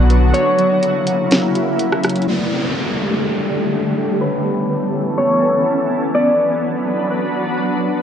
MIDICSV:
0, 0, Header, 1, 7, 480
1, 0, Start_track
1, 0, Tempo, 483871
1, 337, Time_signature, 4, 2, 24, 8
1, 7957, End_track
2, 0, Start_track
2, 0, Title_t, "Harp"
2, 0, Program_c, 0, 46
2, 0, Note_on_c, 0, 74, 106
2, 249, Note_off_c, 0, 74, 0
2, 332, Note_on_c, 0, 73, 99
2, 2229, Note_off_c, 0, 73, 0
2, 2261, Note_on_c, 0, 74, 96
2, 4093, Note_off_c, 0, 74, 0
2, 4175, Note_on_c, 0, 71, 107
2, 5135, Note_on_c, 0, 73, 89
2, 6097, Note_on_c, 0, 74, 102
2, 6157, Note_off_c, 0, 73, 0
2, 6207, Note_off_c, 0, 71, 0
2, 7929, Note_off_c, 0, 74, 0
2, 7957, End_track
3, 0, Start_track
3, 0, Title_t, "Synth keys"
3, 0, Program_c, 1, 88
3, 0, Note_on_c, 1, 59, 95
3, 0, Note_on_c, 1, 74, 87
3, 98, Note_on_c, 1, 71, 83
3, 337, Note_off_c, 1, 59, 0
3, 337, Note_off_c, 1, 71, 0
3, 341, Note_off_c, 1, 74, 0
3, 345, Note_on_c, 1, 78, 83
3, 576, Note_on_c, 1, 54, 86
3, 813, Note_on_c, 1, 66, 78
3, 1049, Note_off_c, 1, 78, 0
3, 1060, Note_on_c, 1, 78, 87
3, 1287, Note_off_c, 1, 54, 0
3, 1299, Note_on_c, 1, 54, 93
3, 1527, Note_off_c, 1, 66, 0
3, 1539, Note_on_c, 1, 66, 84
3, 1759, Note_off_c, 1, 78, 0
3, 1771, Note_on_c, 1, 78, 73
3, 2005, Note_off_c, 1, 54, 0
3, 2017, Note_on_c, 1, 54, 98
3, 2254, Note_off_c, 1, 78, 0
3, 2257, Note_off_c, 1, 54, 0
3, 2258, Note_off_c, 1, 66, 0
3, 2258, Note_on_c, 1, 57, 81
3, 2504, Note_on_c, 1, 69, 74
3, 2736, Note_on_c, 1, 74, 80
3, 2966, Note_off_c, 1, 57, 0
3, 2978, Note_on_c, 1, 57, 85
3, 3205, Note_off_c, 1, 69, 0
3, 3217, Note_on_c, 1, 69, 79
3, 3453, Note_off_c, 1, 74, 0
3, 3465, Note_on_c, 1, 74, 86
3, 3690, Note_off_c, 1, 57, 0
3, 3702, Note_on_c, 1, 57, 74
3, 3930, Note_off_c, 1, 69, 0
3, 3942, Note_on_c, 1, 69, 74
3, 4174, Note_on_c, 1, 73, 77
3, 4180, Note_off_c, 1, 57, 0
3, 4180, Note_off_c, 1, 69, 0
3, 4181, Note_off_c, 1, 74, 0
3, 4415, Note_on_c, 1, 59, 81
3, 4652, Note_on_c, 1, 71, 77
3, 4885, Note_off_c, 1, 73, 0
3, 4897, Note_on_c, 1, 73, 76
3, 5126, Note_off_c, 1, 59, 0
3, 5138, Note_on_c, 1, 59, 84
3, 5367, Note_off_c, 1, 71, 0
3, 5379, Note_on_c, 1, 71, 82
3, 5610, Note_off_c, 1, 73, 0
3, 5622, Note_on_c, 1, 73, 77
3, 5842, Note_off_c, 1, 59, 0
3, 5854, Note_on_c, 1, 59, 80
3, 6087, Note_off_c, 1, 59, 0
3, 6098, Note_off_c, 1, 71, 0
3, 6098, Note_on_c, 1, 59, 85
3, 6100, Note_off_c, 1, 73, 0
3, 6333, Note_on_c, 1, 71, 78
3, 6583, Note_on_c, 1, 74, 78
3, 6803, Note_off_c, 1, 59, 0
3, 6815, Note_on_c, 1, 59, 82
3, 7039, Note_off_c, 1, 71, 0
3, 7051, Note_on_c, 1, 71, 78
3, 7291, Note_off_c, 1, 74, 0
3, 7303, Note_on_c, 1, 74, 82
3, 7525, Note_off_c, 1, 59, 0
3, 7537, Note_on_c, 1, 59, 91
3, 7766, Note_off_c, 1, 71, 0
3, 7778, Note_on_c, 1, 71, 79
3, 7957, Note_off_c, 1, 59, 0
3, 7957, Note_off_c, 1, 71, 0
3, 7957, Note_off_c, 1, 74, 0
3, 7957, End_track
4, 0, Start_track
4, 0, Title_t, "Ambient pad"
4, 0, Program_c, 2, 92
4, 0, Note_on_c, 2, 50, 89
4, 0, Note_on_c, 2, 54, 77
4, 0, Note_on_c, 2, 59, 80
4, 0, Note_on_c, 2, 66, 94
4, 298, Note_off_c, 2, 59, 0
4, 317, Note_off_c, 2, 50, 0
4, 317, Note_off_c, 2, 66, 0
4, 339, Note_on_c, 2, 58, 79
4, 340, Note_on_c, 2, 64, 92
4, 342, Note_on_c, 2, 49, 85
4, 2218, Note_off_c, 2, 54, 0
4, 2239, Note_off_c, 2, 58, 0
4, 2240, Note_off_c, 2, 49, 0
4, 2240, Note_off_c, 2, 64, 0
4, 2256, Note_on_c, 2, 50, 82
4, 2257, Note_on_c, 2, 57, 72
4, 2258, Note_on_c, 2, 67, 88
4, 2259, Note_on_c, 2, 55, 76
4, 4158, Note_off_c, 2, 50, 0
4, 4158, Note_off_c, 2, 57, 0
4, 4159, Note_off_c, 2, 55, 0
4, 4159, Note_off_c, 2, 67, 0
4, 4177, Note_on_c, 2, 61, 76
4, 4178, Note_on_c, 2, 52, 82
4, 4178, Note_on_c, 2, 59, 76
4, 4178, Note_on_c, 2, 69, 90
4, 6078, Note_off_c, 2, 52, 0
4, 6078, Note_off_c, 2, 61, 0
4, 6079, Note_off_c, 2, 69, 0
4, 6096, Note_on_c, 2, 62, 72
4, 6096, Note_on_c, 2, 71, 89
4, 6097, Note_on_c, 2, 54, 83
4, 7957, Note_off_c, 2, 54, 0
4, 7957, Note_off_c, 2, 59, 0
4, 7957, Note_off_c, 2, 62, 0
4, 7957, Note_off_c, 2, 71, 0
4, 7957, End_track
5, 0, Start_track
5, 0, Title_t, "808-style bass"
5, 0, Program_c, 3, 38
5, 0, Note_on_c, 3, 35, 105
5, 320, Note_off_c, 3, 35, 0
5, 7957, End_track
6, 0, Start_track
6, 0, Title_t, "Downlifter"
6, 0, Program_c, 4, 103
6, 2258, Note_on_c, 4, 60, 78
6, 6098, Note_off_c, 4, 60, 0
6, 7957, End_track
7, 0, Start_track
7, 0, Title_t, "Drums"
7, 100, Note_on_c, 9, 42, 73
7, 199, Note_off_c, 9, 42, 0
7, 340, Note_on_c, 9, 42, 81
7, 439, Note_off_c, 9, 42, 0
7, 579, Note_on_c, 9, 42, 63
7, 678, Note_off_c, 9, 42, 0
7, 821, Note_on_c, 9, 42, 85
7, 920, Note_off_c, 9, 42, 0
7, 1061, Note_on_c, 9, 42, 82
7, 1160, Note_off_c, 9, 42, 0
7, 1299, Note_on_c, 9, 42, 83
7, 1311, Note_on_c, 9, 38, 124
7, 1398, Note_off_c, 9, 42, 0
7, 1410, Note_off_c, 9, 38, 0
7, 1540, Note_on_c, 9, 42, 74
7, 1639, Note_off_c, 9, 42, 0
7, 1779, Note_on_c, 9, 42, 76
7, 1879, Note_off_c, 9, 42, 0
7, 1909, Note_on_c, 9, 37, 99
7, 2009, Note_off_c, 9, 37, 0
7, 2019, Note_on_c, 9, 42, 76
7, 2029, Note_on_c, 9, 37, 103
7, 2078, Note_off_c, 9, 42, 0
7, 2078, Note_on_c, 9, 42, 66
7, 2129, Note_off_c, 9, 37, 0
7, 2139, Note_off_c, 9, 42, 0
7, 2139, Note_on_c, 9, 42, 55
7, 2201, Note_off_c, 9, 42, 0
7, 2201, Note_on_c, 9, 42, 44
7, 2300, Note_off_c, 9, 42, 0
7, 7957, End_track
0, 0, End_of_file